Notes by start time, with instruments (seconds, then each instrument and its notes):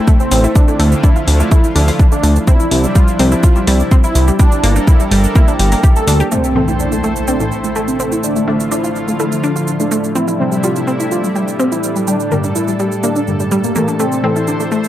Already playing: analog synth pad A3 C4 E4, ambient pad E4 C5 A5
0.07 synth arpeggio sound A3, kick, shaker
0.20 analog synth lead C4, shaker
0.31 analog synth bass A1, synth arpeggio sound C4, open hi-hat, shaker
0.44 synth arpeggio sound E4, shaker
0.55 analog synth pad D3 E4 F4, ambient pad F3, analog synth lead D4, kick, shaker
0.68 synth arpeggio sound A3, shaker
0.79 analog synth bass D2, synth arpeggio sound A3, open hi-hat
0.88 ambient pad D5
0.92 shaker
1.03 synth arpeggio sound D4, analog synth lead E4, kick, shaker
1.16 synth arpeggio sound F4, shaker
1.27 analog synth bass D2, open hi-hat, shaker
1.40 synth arpeggio sound A3, shaker
1.51 synth arpeggio sound A3, analog synth lead E4, kick, shaker
1.64 shaker
1.75 analog synth bass D2, synth arpeggio sound D4, open hi-hat, shaker
1.88 synth arpeggio sound F4, open hi-hat, shaker
1.99 kick, shaker
2.12 synth arpeggio sound A3, analog synth lead D4, shaker
2.23 analog synth bass D2, synth arpeggio sound A3, open hi-hat, shaker
2.36 shaker
2.47 analog synth pad C3 G3 D4 E4, synth arpeggio sound C4, ambient pad E4, analog synth lead E4, kick, shaker
2.60 synth arpeggio sound E4, shaker
2.71 analog synth bass C2, ambient pad C5, open hi-hat
2.84 synth arpeggio sound G3, shaker
2.95 synth arpeggio sound G3, analog synth lead F4, kick, shaker
3.08 shaker
3.19 analog synth bass C2, synth arpeggio sound C4, open hi-hat, shaker
3.32 synth arpeggio sound E4, ambient pad G5, shaker
3.43 analog synth lead F4, kick, shaker
3.56 synth arpeggio sound G3, shaker
3.67 analog synth bass C2, synth arpeggio sound G3, open hi-hat, shaker
3.80 shaker
3.91 synth arpeggio sound C4, kick, shaker
4.04 synth arpeggio sound E4, analog synth lead E4, shaker
4.15 analog synth bass C2, open hi-hat, shaker
4.28 synth arpeggio sound G3, shaker
4.39 synth arpeggio sound G3, analog synth pad D4 A4 A#4, analog synth lead D4, ambient pad D4, kick, shaker
4.52 shaker
4.63 analog synth bass G1, synth arpeggio sound A#3, open hi-hat, shaker
4.76 synth arpeggio sound D4, shaker
4.87 analog synth lead E4, kick, shaker
5.00 synth arpeggio sound G3, shaker
5.11 analog synth bass G1, synth arpeggio sound G3, open hi-hat, shaker
5.24 shaker
5.35 synth arpeggio sound A#3, analog synth lead E4, kick, shaker
5.48 synth arpeggio sound D4, shaker
5.59 analog synth bass G1, synth arpeggio sound G3, open hi-hat, shaker
5.72 synth arpeggio sound A#3, open hi-hat, shaker
5.84 synth arpeggio sound G4, kick, shaker
5.96 analog synth lead A4, shaker
6.07 analog synth bass D2, synth arpeggio sound D4, open hi-hat, shaker
6.20 synth arpeggio sound G4, shaker
6.32 synth drone A2 A3, synth arpeggio sound A3, analog synth pad A3 E4 A4 C5, analog synth lead C4, ambient pad E4, impact, shaker
6.44 shaker
6.56 synth stab A2 E3 A3, synth arpeggio sound C4
6.68 synth arpeggio sound E4, shaker
6.80 analog synth lead D4, shaker
6.92 synth arpeggio sound A3, shaker
7.04 synth arpeggio sound A3, shaker
7.16 ambient pad C5 A5, shaker
7.28 synth arpeggio sound C4, analog synth lead D4, shaker
7.40 synth stab A2 E3 A3, synth arpeggio sound E4, shaker
7.52 shaker
7.64 synth arpeggio sound A3, shaker
7.76 synth arpeggio sound A3, shaker
7.88 analog synth lead C4, shaker
8.00 synth arpeggio sound C4, shaker
8.12 synth arpeggio sound E4, shaker
8.24 analog synth pad D3 F4, ambient pad F3, analog synth lead D4, shaker
8.36 synth arpeggio sound A3, shaker
8.48 synth stab D3 A3 D4, synth arpeggio sound A3
8.60 shaker
8.72 synth arpeggio sound D4, analog synth lead E4, shaker
8.84 synth arpeggio sound F4, shaker
8.96 shaker
9.04 ambient pad D5
9.08 synth arpeggio sound A3, shaker
9.20 synth arpeggio sound A3, analog synth lead E4, shaker
9.32 shaker
9.44 synth arpeggio sound D4, shaker
9.56 synth arpeggio sound F4, shaker
9.68 shaker
9.80 synth arpeggio sound A3, analog synth lead D4, shaker
9.91 synth arpeggio sound A3, shaker
10.04 shaker
10.15 analog synth pad C3 G3 D4 E4, synth arpeggio sound C4, analog synth lead E4, ambient pad G4, shaker
10.28 synth arpeggio sound E4, shaker
10.39 synth stab C3 G3 C4
10.52 synth arpeggio sound G3, shaker
10.63 synth arpeggio sound G3, analog synth lead F4, shaker
10.76 shaker
10.84 synth arpeggio sound C4, ambient pad E5, shaker
11.00 synth arpeggio sound E4, ambient pad C6, shaker
11.11 analog synth lead F4, shaker
11.24 synth arpeggio sound G3, shaker
11.36 synth arpeggio sound G3, shaker
11.48 shaker
11.60 synth arpeggio sound C4, shaker
11.72 analog synth lead E4, synth arpeggio sound E4, shaker
11.83 shaker
11.96 synth arpeggio sound G3, shaker
12.07 synth arpeggio sound G3, analog synth lead D4, analog synth pad A4, shaker
12.20 shaker
12.31 synth stab G2 D3 G3, synth arpeggio sound A#3, shaker
12.44 synth arpeggio sound D4, shaker
12.55 analog synth lead E4, shaker
12.60 ambient pad D5
12.68 synth arpeggio sound G3, shaker
12.79 synth arpeggio sound G3, shaker
12.92 shaker
13.03 synth arpeggio sound A#3, analog synth lead D4, shaker
13.16 synth arpeggio sound D4, shaker
13.27 synth stab G2 D3 G3, shaker
13.40 synth arpeggio sound G3, shaker
13.51 synth arpeggio sound G3, shaker
13.64 analog synth lead A#3, shaker
13.75 synth stab A2 E3 A3, synth arpeggio sound A#3, shaker
13.88 synth arpeggio sound D4, shaker
13.99 synth arpeggio sound A3, analog synth pad A3 E4 C5, analog synth lead C4, ambient pad E4, shaker
14.12 shaker
14.23 synth stab A2 E3 A3, synth arpeggio sound C4
14.36 synth arpeggio sound E4, shaker
14.48 analog synth lead D4, shaker
14.54 ambient pad C5
14.60 synth arpeggio sound A3, shaker
14.72 synth arpeggio sound A3, shaker
14.84 shaker